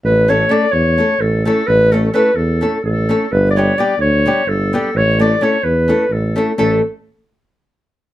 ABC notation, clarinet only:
X:1
M:7/8
L:1/16
Q:1/4=129
K:Amix
V:1 name="Clarinet"
B2 c2 d2 c4 A2 A2 | B2 A2 B2 A4 A4 | B3/2 d/2 c2 d2 c4 A2 A2 | c2 d2 c2 B4 A4 |
A2 z12 |]